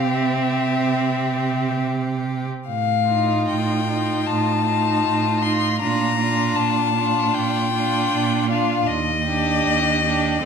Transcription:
Already playing: cello C3, viola C4, violin G4 F5
0.13 violin E5
2.69 cello A2, violin F5
3.09 viola D#4, violin F4
3.49 cello A2, violin G5
3.88 viola D#4, violin F4
4.26 cello A2, violin A5
4.67 viola D#4, violin F4
5.06 cello A2
5.43 viola D#4, violin F4 C6
5.80 cello A#2, viola D4, violin F4 A#5
6.19 viola D4, violin F4
6.56 cello A#2, violin A5
6.96 viola D4, violin F4
7.34 cello A#2, violin G5
7.74 viola D4, violin F4
8.13 cello A#2
8.50 viola D4, violin F4 F5
8.87 cello D#2, violin D#5
9.25 viola D4, violin G4
9.66 cello D#2
10.03 viola D4, violin G4

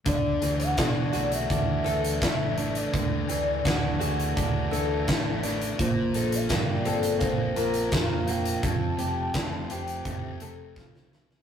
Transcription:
0.06 fingered electric bass D2, distorted electric guitar D3, clean electric guitar D3, soft synth lead D5, kick, closed hi-hat
0.42 fingered electric bass D2, distorted electric guitar E3, clean electric guitar E3, twelve-string acoustic guitar G#4, closed hi-hat
0.60 soft synth lead F#5, closed hi-hat
0.77 fingered electric bass B2, distorted electric guitar E3, clean electric guitar D4, twelve-string acoustic guitar F#4, soft synth lead D5, kick, snare, closed hi-hat
1.13 fingered electric bass B1, distorted electric guitar A3, clean electric guitar F#4, twelve-string acoustic guitar G#4, closed hi-hat
1.32 soft synth lead E5, closed hi-hat
1.50 fingered electric bass D2, distorted electric guitar E3, clean electric guitar D4, kick, closed hi-hat
1.84 fingered electric bass D2, clean electric guitar E3, distorted electric guitar D4, twelve-string acoustic guitar A4, closed hi-hat
2.04 closed hi-hat
2.22 fingered electric bass A1, distorted electric guitar E3, clean electric guitar A3, soft synth lead E5, kick, snare, closed hi-hat
2.57 distorted electric guitar A3, clean electric guitar D4, closed hi-hat
2.75 soft synth lead D5, closed hi-hat
2.92 fingered electric bass D2, distorted electric guitar D3, clean electric guitar D3, soft synth lead D5, kick, closed hi-hat
3.27 fingered electric bass D2, distorted electric guitar E3, clean electric guitar E3, twelve-string acoustic guitar G#4, closed hi-hat
3.64 fingered electric bass D2, distorted electric guitar E3, clean electric guitar D4, twelve-string acoustic guitar F#4, kick, snare, closed hi-hat
3.99 fingered electric bass D2, distorted electric guitar A3, clean electric guitar F#4, twelve-string acoustic guitar G#4, closed hi-hat
4.20 closed hi-hat
4.36 fingered electric bass D2, distorted electric guitar E3, clean electric guitar D4, kick, closed hi-hat
4.71 fingered electric bass D2, clean electric guitar E3, distorted electric guitar D4, twelve-string acoustic guitar A4, closed hi-hat
5.07 fingered electric bass A1, distorted electric guitar E3, clean electric guitar A3, kick, snare, closed hi-hat
5.43 distorted electric guitar A3, clean electric guitar D4, snare, closed hi-hat
5.61 closed hi-hat
5.79 fingered electric bass A#1, clean electric guitar A#2, distorted electric guitar A#2, soft synth lead C5, kick, closed hi-hat
6.13 fingered electric bass A#1, clean electric guitar A#2, distorted electric guitar F3, twelve-string acoustic guitar A4, closed hi-hat
6.32 soft synth lead F5, closed hi-hat
6.49 fingered electric bass G2, distorted electric guitar A#2, clean electric guitar A#3, twelve-string acoustic guitar G4, soft synth lead D5, kick, snare, closed hi-hat
6.85 fingered electric bass G1, distorted electric guitar F3, clean electric guitar C4, twelve-string acoustic guitar A4, closed hi-hat
7.03 closed hi-hat
7.19 fingered electric bass A#1, distorted electric guitar A#2, clean electric guitar A#3, soft synth lead C5, kick, closed hi-hat
7.56 fingered electric bass A#1, clean electric guitar A#2, distorted electric guitar A#3, twelve-string acoustic guitar A#4, closed hi-hat
7.74 closed hi-hat
7.92 fingered electric bass F1, distorted electric guitar A#2, clean electric guitar F3, soft synth lead F5, kick, snare, closed hi-hat
8.28 distorted electric guitar F3, clean electric guitar A#3, soft synth lead G5, closed hi-hat
8.45 closed hi-hat
8.63 fingered electric bass F1, distorted electric guitar F2, clean electric guitar F2, soft synth lead A5, kick, closed hi-hat
8.97 fingered electric bass F1, distorted electric guitar C3, clean electric guitar C3, twelve-string acoustic guitar G4, closed hi-hat
9.32 distorted electric guitar C3, clean electric guitar A3, twelve-string acoustic guitar F4, kick, snare, closed hi-hat
9.69 fingered electric bass F1, distorted electric guitar F3, clean electric guitar C4, twelve-string acoustic guitar G4, closed hi-hat
9.88 closed hi-hat
10.05 fingered electric bass F1, distorted electric guitar C3, clean electric guitar A3, kick, closed hi-hat
10.40 fingered electric bass F1, clean electric guitar C3, distorted electric guitar A3, twelve-string acoustic guitar A4, closed hi-hat
10.76 fingered electric bass C2, distorted electric guitar C3, clean electric guitar F3, kick, snare
10.95 snare
11.11 distorted electric guitar F3, clean electric guitar A3, snare
11.31 snare

